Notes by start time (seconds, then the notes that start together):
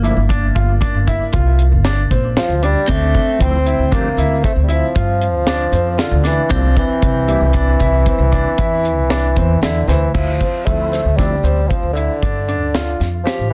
Already playing: G1 A#3
0.02 F3 A3 A#3 D4 E4, closed hi-hat
0.16 G1
0.29 D4, kick, closed hi-hat, shaker
0.55 G1 F4, kick, closed hi-hat, shaker
0.81 D4, kick, closed hi-hat
0.94 G1
1.07 E4, kick, closed hi-hat, shaker
1.32 C2 F4, kick, closed hi-hat, shaker
1.59 closed hi-hat
1.72 G1
1.85 D4, snare, closed hi-hat
2.11 A#1 C4, kick, closed hi-hat, shaker
2.37 F3 F4, snare, closed hi-hat
2.49 D2
2.63 G3 D4, closed hi-hat
2.88 D2 A3 C4 D4, kick, closed hi-hat, shaker
3.15 kick, closed hi-hat
3.38 D2 F3 A3 C4 E4, kick, closed hi-hat
3.66 E4, closed hi-hat
3.78 D2
3.91 F3 A3 A#3 C4 D4 G4, kick, closed hi-hat, shaker
4.17 D2 E4, closed hi-hat, shaker
4.43 A3 C4, kick, closed hi-hat
4.56 D2
4.63 G3
4.69 F3 E4, closed hi-hat, shaker
4.95 G2 F4, kick, closed hi-hat, shaker
5.21 closed hi-hat
5.34 D2
5.47 D4, snare, closed hi-hat
5.72 F2 C4, closed hi-hat, shaker
5.98 D3 F4, snare, closed hi-hat
6.11 D2
6.24 E3 D4, snare, closed hi-hat
6.49 C2 F3 G3 A#3 C4 D4 E4, kick, closed hi-hat, shaker
6.76 E3, kick, closed hi-hat, shaker
7.02 C2, kick, closed hi-hat
7.27 G3 A#3 D4 E4 G4, closed hi-hat
7.41 C2
7.53 D4, kick, closed hi-hat, shaker
7.80 C2 E4, kick, closed hi-hat
8.06 C4, kick, closed hi-hat, shaker
8.18 C2
8.32 D4, kick, closed hi-hat, shaker
8.58 E2 E4, kick, closed hi-hat
8.84 closed hi-hat, shaker
8.97 C2
9.10 D4, snare, closed hi-hat, shaker
9.36 E2 C4, kick, closed hi-hat, shaker
9.61 E2 D3 E4, snare, closed hi-hat, shaker
9.87 D2 E3 C4, snare, closed hi-hat
10.14 D2 F3 E4, kick, crash
10.40 C4, kick, closed hi-hat
10.65 D2 F3 A3 C4 E4, kick, closed hi-hat
10.92 C4, snare, closed hi-hat
11.05 D2
11.16 F3 G3 A3 C4 D4 E4, kick, snare, closed hi-hat
11.43 D2 C4, closed hi-hat
11.68 F3 C4, kick, closed hi-hat
11.83 D2
11.93 D3 E4, closed hi-hat
12.22 G2 D4, kick, closed hi-hat
12.48 D4, closed hi-hat
12.61 D2
12.74 F4, snare, closed hi-hat
13.00 F2, snare, closed hi-hat
13.24 F3 G4, snare, closed hi-hat
13.39 A1